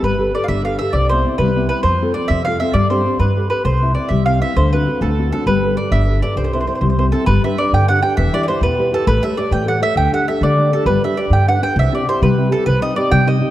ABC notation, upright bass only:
X:1
M:6/8
L:1/8
Q:3/8=133
K:C
V:1 name="Upright bass" clef=bass
G,,,3 G,,,3 | C,,3 C,,3 | F,,3 F,,3 | G,,3 G,,3 |
C,,3 C,,3 | D,,3 D,,3 | G,,,3 G,,,3 | C,,3 C,,3 |
[K:G] G,,, z2 G,,3 | E,,, z2 E,,3 | A,,, z2 A,,3 | D,, z2 D,3 |
G,,, z2 G,,3 | C,, z2 C,3 | C,, z2 C,3 |]